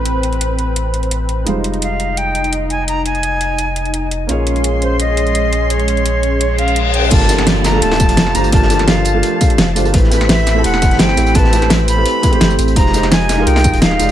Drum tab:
CC |----------------|----------------|----------------|----------------|
HH |x-xxx-x-x-xxx-x-|x-xxx-x-x-xxx-x-|x-xxx-x-x-xxx-x-|x-xxx-x-x-xxx-x-|
TB |----------------|----------------|----------------|----------------|
SD |----------------|----------------|----------------|----------------|
BD |----------------|----------------|----------------|----------------|

CC |----------------|x---------------|----------------|----------------|
HH |xxxxx-x-x-xxx-x-|x-xxxxx-xxxxx-xx|x-xxx-x-x-xxx-xx|x-xxxxx-x-xxx-xx|
TB |----------------|--x---x---x---xx|--x---x---x---xx|--x---x---x---xx|
SD |----------------|-oooo-o--o--oo--|-oooo-------o---|-oooo-o--ooooo--|
BD |----------------|o---------o-----|o---------o-----|o---------o-----|

CC |----------------|----------------|
HH |x-xxx-x-x-xxx-xx|x-xxxxx-xxxxx-x-|
TB |--x---x---x--xxx|--x---x---x---x-|
SD |-oooo-------o---|-oooo-o--o--oo--|
BD |o---------o-----|o---------o-----|